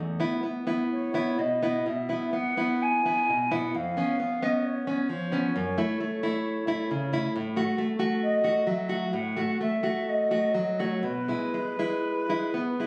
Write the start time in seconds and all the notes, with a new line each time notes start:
Already playing: E2
0.20 B3 E4
0.43 B3
0.67 B3 E4
0.92 C#5
1.14 B3 E4
1.39 B2 D#5
1.63 B3 E4
1.86 B2 E5
2.09 B3 E4
2.33 B3 F#5
2.57 B3 E4
2.82 G#5
3.05 B3 E4
3.29 B2
3.51 B3 E4 F#5
3.75 F2 F5
3.97 B3 C#4
4.20 B3
4.43 B3 C#4 D#5
4.64 C#5
4.87 B3 C#4
5.09 F3
5.32 B3 C#4
5.56 F#2
5.78 A3 E4
6.00 A3
6.23 A3 E4
6.67 A3 E4
6.91 C#3
7.13 A3 E4
7.36 A2
7.56 A3 F#4
7.78 A3
7.99 A3 F#4
8.23 D#5
8.44 A3 F#4
8.67 F#3 E5
8.89 A3 F#4
9.13 A2 F#5
9.37 A3 F#4
9.61 A3 E5
9.83 A3 F#4
10.09 D#5
10.31 A3 F#4
10.54 F#3
10.80 A3 F#4 C#5
11.03 B2 B4
11.28 G#3 E4
11.54 G#3
11.79 G#3 E4
12.29 G#3 E4
12.54 B3
12.80 G#3 E4